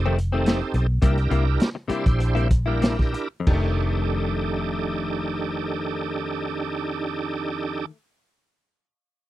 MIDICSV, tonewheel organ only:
0, 0, Header, 1, 2, 480
1, 0, Start_track
1, 0, Tempo, 562852
1, 872, Time_signature, 4, 2, 24, 8
1, 1364, Tempo, 608519
1, 2324, Tempo, 662252
1, 7021, End_track
2, 0, Start_track
2, 0, Title_t, "Tonewheel organ"
2, 0, Program_c, 0, 16
2, 0, Note_on_c, 0, 60, 88
2, 0, Note_on_c, 0, 63, 79
2, 0, Note_on_c, 0, 67, 75
2, 0, Note_on_c, 0, 69, 89
2, 141, Note_off_c, 0, 60, 0
2, 142, Note_off_c, 0, 63, 0
2, 143, Note_off_c, 0, 67, 0
2, 144, Note_off_c, 0, 69, 0
2, 281, Note_on_c, 0, 60, 85
2, 281, Note_on_c, 0, 67, 78
2, 284, Note_on_c, 0, 63, 78
2, 285, Note_on_c, 0, 69, 92
2, 738, Note_off_c, 0, 60, 0
2, 739, Note_off_c, 0, 67, 0
2, 740, Note_off_c, 0, 63, 0
2, 741, Note_off_c, 0, 69, 0
2, 871, Note_on_c, 0, 62, 80
2, 874, Note_on_c, 0, 64, 77
2, 874, Note_on_c, 0, 67, 73
2, 875, Note_on_c, 0, 70, 95
2, 1440, Note_off_c, 0, 62, 0
2, 1441, Note_off_c, 0, 67, 0
2, 1442, Note_off_c, 0, 64, 0
2, 1442, Note_off_c, 0, 70, 0
2, 1593, Note_on_c, 0, 67, 78
2, 1594, Note_on_c, 0, 62, 81
2, 1594, Note_on_c, 0, 64, 75
2, 1597, Note_on_c, 0, 72, 94
2, 2057, Note_off_c, 0, 64, 0
2, 2057, Note_off_c, 0, 67, 0
2, 2058, Note_off_c, 0, 62, 0
2, 2059, Note_off_c, 0, 72, 0
2, 2204, Note_on_c, 0, 62, 85
2, 2206, Note_on_c, 0, 70, 94
2, 2208, Note_on_c, 0, 64, 77
2, 2210, Note_on_c, 0, 67, 78
2, 2661, Note_off_c, 0, 62, 0
2, 2662, Note_off_c, 0, 70, 0
2, 2663, Note_off_c, 0, 64, 0
2, 2663, Note_off_c, 0, 67, 0
2, 2797, Note_on_c, 0, 63, 72
2, 2797, Note_on_c, 0, 67, 71
2, 2797, Note_on_c, 0, 69, 81
2, 2799, Note_on_c, 0, 62, 77
2, 5976, Note_off_c, 0, 63, 0
2, 5976, Note_off_c, 0, 67, 0
2, 5976, Note_off_c, 0, 69, 0
2, 5978, Note_off_c, 0, 62, 0
2, 7021, End_track
0, 0, End_of_file